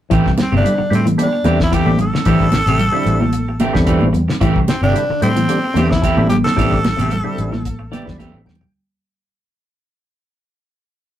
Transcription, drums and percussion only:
0.11 kick, closed hi-hat
0.26 kick, snare
0.38 snare, closed hi-hat, high conga, low conga
0.53 high conga
0.65 closed hi-hat, low conga
0.92 closed hi-hat, low conga
1.06 closed hi-hat, high conga
1.18 closed hi-hat, high conga
1.44 closed hi-hat, high conga
1.60 kick, snare
1.73 kick, closed hi-hat
1.86 high conga
1.98 closed hi-hat, low conga
2.15 snare
2.25 kick, closed hi-hat
2.40 kick
2.52 snare, closed hi-hat, high conga
2.67 closed hi-hat
2.79 closed hi-hat, low conga
3.05 closed hi-hat, low conga
3.21 high conga
3.33 closed hi-hat
3.60 closed hi-hat, high conga
3.75 kick, snare
3.87 kick, closed hi-hat
4.01 high conga
4.14 closed hi-hat, low conga
4.29 snare
4.41 kick, closed hi-hat
4.56 kick
4.68 snare, closed hi-hat, high conga
4.96 closed hi-hat
5.22 closed hi-hat, low conga
5.36 closed hi-hat, high conga
5.49 closed hi-hat
5.76 snare, closed hi-hat, high conga
5.91 kick, snare
6.03 kick, closed hi-hat
6.17 high conga
6.30 closed hi-hat, high conga, low conga
6.46 snare
6.58 kick, closed hi-hat
6.72 kick
6.84 snare, closed hi-hat, high conga, low conga
6.99 closed hi-hat, high conga
7.11 closed hi-hat, low conga
7.38 closed hi-hat, low conga
7.53 snare, high conga
7.65 kick, closed hi-hat
7.93 snare, closed hi-hat, high conga
8.02 high conga
8.07 kick, snare, low conga
8.19 kick, closed hi-hat, high conga
8.28 low conga
8.46 snare, low conga
8.55 low conga
8.61 floor tom, low conga

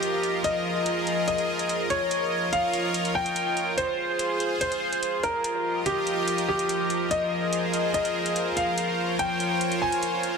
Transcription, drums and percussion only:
0.03 closed hi-hat
0.23 closed hi-hat
0.44 closed hi-hat
0.86 closed hi-hat
1.07 closed hi-hat
1.28 closed hi-hat
1.38 closed hi-hat
1.59 closed hi-hat
1.69 closed hi-hat
1.90 closed hi-hat
2.11 closed hi-hat
2.53 closed hi-hat
2.73 closed hi-hat
2.94 closed hi-hat
3.05 closed hi-hat
3.26 closed hi-hat
3.36 closed hi-hat
3.57 closed hi-hat
3.78 closed hi-hat
4.19 closed hi-hat
4.40 closed hi-hat
4.61 closed hi-hat
4.72 closed hi-hat
4.93 closed hi-hat
5.03 closed hi-hat
5.23 closed hi-hat
5.44 closed hi-hat
5.86 closed hi-hat
6.07 closed hi-hat
6.28 closed hi-hat
6.38 closed hi-hat
6.59 closed hi-hat
6.69 closed hi-hat
6.90 closed hi-hat
7.11 closed hi-hat
7.53 closed hi-hat
7.73 closed hi-hat
7.94 closed hi-hat
8.05 closed hi-hat
8.26 closed hi-hat
8.36 closed hi-hat
8.57 closed hi-hat
8.78 closed hi-hat
9.19 closed hi-hat
9.40 closed hi-hat
9.61 closed hi-hat
9.72 closed hi-hat
9.92 closed hi-hat
10.03 closed hi-hat
10.23 closed hi-hat

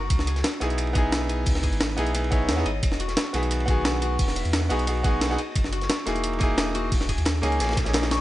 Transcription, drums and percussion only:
0.10 kick, closed hi-hat, ride
0.19 snare
0.27 closed hi-hat, ride
0.36 snare, closed hi-hat
0.44 snare, closed hi-hat, ride
0.53 ride
0.61 snare, closed hi-hat, ride
0.70 closed hi-hat
0.78 closed hi-hat, ride
0.87 ride
0.95 kick, closed hi-hat, ride
1.12 snare, closed hi-hat, ride
1.29 closed hi-hat, ride
1.46 kick, closed hi-hat, open hi-hat
1.55 snare, ride
1.63 kick, closed hi-hat, ride
1.73 closed hi-hat, ride
1.80 snare, closed hi-hat, ride
1.98 closed hi-hat, ride
2.06 closed hi-hat
2.15 closed hi-hat, ride
2.24 ride
2.32 kick, closed hi-hat, ride
2.49 snare, closed hi-hat, ride
2.58 snare
2.66 closed hi-hat, ride
2.83 kick, closed hi-hat, ride
2.92 snare
3.00 closed hi-hat, ride
3.08 snare, closed hi-hat
3.17 snare, closed hi-hat, ride
3.26 ride
3.34 snare, closed hi-hat, ride
3.43 closed hi-hat
3.51 closed hi-hat, ride
3.60 ride
3.68 kick, closed hi-hat, ride
3.85 snare, closed hi-hat, ride
4.02 closed hi-hat, ride
4.19 kick, closed hi-hat, open hi-hat
4.28 snare, ride
4.36 closed hi-hat, ride
4.45 closed hi-hat, ride
4.53 snare, closed hi-hat, ride
4.70 closed hi-hat, ride
4.79 closed hi-hat
4.87 closed hi-hat, ride
4.97 ride
5.04 kick, closed hi-hat, ride
5.21 snare, closed hi-hat, ride
5.31 snare
5.38 closed hi-hat, ride
5.56 kick, closed hi-hat, ride
5.64 snare
5.73 closed hi-hat, ride
5.81 snare, closed hi-hat
5.89 snare, closed hi-hat, ride
5.99 ride
6.07 snare, closed hi-hat, ride
6.16 closed hi-hat
6.23 closed hi-hat, ride
6.33 ride
6.40 kick, closed hi-hat, ride
6.58 snare, closed hi-hat, ride
6.74 closed hi-hat, ride
6.92 kick, closed hi-hat, open hi-hat
7.01 snare, ride
7.09 kick, closed hi-hat, ride
7.18 closed hi-hat, ride
7.25 snare, closed hi-hat, ride
7.43 closed hi-hat, ride
7.52 closed hi-hat
7.60 snare, closed hi-hat, ride
7.64 snare, ride
7.69 snare, ride
7.72 snare, ride
7.76 kick, snare, closed hi-hat, ride
7.85 snare, closed hi-hat, ride
7.93 snare, closed hi-hat, ride
8.03 snare, ride
8.11 snare, closed hi-hat, ride

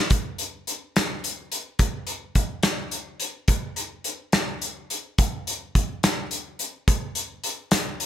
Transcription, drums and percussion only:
0.10 kick, closed hi-hat
0.38 closed hi-hat
0.67 closed hi-hat
0.96 snare, closed hi-hat
1.24 closed hi-hat
1.52 closed hi-hat
1.79 kick, closed hi-hat
2.07 closed hi-hat
2.35 kick, closed hi-hat
2.63 snare, closed hi-hat
2.91 closed hi-hat
3.20 closed hi-hat
3.48 kick, closed hi-hat
3.76 closed hi-hat
4.04 closed hi-hat
4.32 snare, closed hi-hat
4.62 closed hi-hat
4.90 closed hi-hat
5.18 kick, closed hi-hat
5.47 closed hi-hat
5.75 kick, closed hi-hat
6.03 snare, closed hi-hat
6.31 closed hi-hat
6.59 closed hi-hat
6.88 kick, closed hi-hat
7.15 closed hi-hat
7.44 closed hi-hat
7.71 snare, closed hi-hat
8.00 closed hi-hat

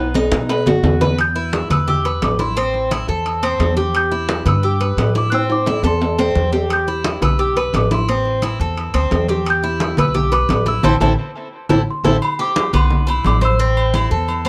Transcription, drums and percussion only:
0.14 high conga, low timbale
0.32 high conga, low timbale
0.49 low timbale
0.66 low conga, low timbale
0.84 low conga, low timbale
1.01 low conga, low timbale
1.19 high conga, high timbale
1.36 high conga
1.53 high conga, high timbale, low timbale
1.71 high conga, low conga, high timbale
1.88 high conga, low conga
2.05 high conga, high timbale
2.22 high conga, high timbale, low timbale
2.39 high conga
2.57 high conga, high timbale
2.74 high conga
2.91 high conga, high timbale, low timbale
3.08 high conga
3.26 high conga, high timbale
3.43 high conga, high timbale
3.60 high conga, high timbale, low timbale
3.77 high conga
3.94 high conga, high timbale
4.11 high conga
4.29 high conga, high timbale, low timbale
4.46 high conga, low conga, high timbale
4.63 high conga
4.80 high conga, high timbale
4.98 high conga, high timbale, low timbale
5.15 high conga
5.32 high conga, high timbale
5.50 high conga, high timbale
5.66 high conga, low timbale
5.84 high conga, low timbale
6.01 high conga, low timbale
6.18 high conga, low timbale
6.35 high conga
6.53 low timbale
6.70 high conga, high timbale
6.87 high conga
7.04 high conga, high timbale, low timbale
7.22 high conga, low conga, high timbale
7.39 high conga
7.56 high conga, high timbale
7.74 high conga, high timbale, low timbale
7.91 high conga
8.09 high conga, high timbale
8.25 high conga
8.42 high conga, high timbale, low timbale
8.60 high conga
8.77 high conga, high timbale
8.94 high conga, high timbale
9.11 high conga, high timbale, low timbale
9.28 high conga
9.45 high conga, high timbale
9.63 high conga
9.80 high conga, high timbale, low timbale
9.97 high conga, low conga, high timbale
10.15 high conga, low conga
10.32 high conga, high timbale
10.49 high conga, high timbale, low timbale
10.66 high conga
10.83 low conga, high timbale
11.01 low conga, high timbale
11.69 low conga, high timbale
12.04 low conga, high timbale
12.22 high conga, low agogo
12.39 high conga
12.56 high conga, low timbale, low agogo
12.73 high conga, low conga, low agogo
12.90 high conga, low conga
13.08 high conga, low agogo
13.24 high conga, low timbale, low agogo
13.41 high conga, low agogo
13.59 high conga
13.76 high conga, low agogo
13.94 high conga, low timbale, low agogo
14.11 high conga
14.28 high conga, low agogo
14.45 high conga

